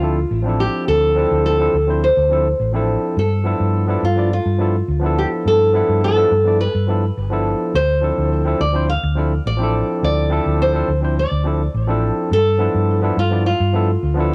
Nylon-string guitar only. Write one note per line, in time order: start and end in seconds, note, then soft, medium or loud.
0.00 0.60 F4 medium
0.60 0.88 G4 medium
0.88 1.45 A4 loud
1.46 2.03 A4 loud
2.04 2.85 C5 medium
3.19 4.00 A4 medium
4.04 4.32 F4 medium
4.33 5.18 F4 medium
5.19 5.26 G4 medium
5.48 6.03 A4 medium
6.04 6.60 A4 loud
6.61 7.42 B4 medium
7.75 8.28 C5 loud
8.61 8.87 D5 loud
8.89 9.47 F5 loud
9.47 10.03 D5 loud
10.04 10.61 D5 medium
10.62 11.14 C5 medium
11.19 11.71 D5 medium
12.33 13.19 A4 loud
13.19 13.45 F4 medium
13.46 14.28 F4 medium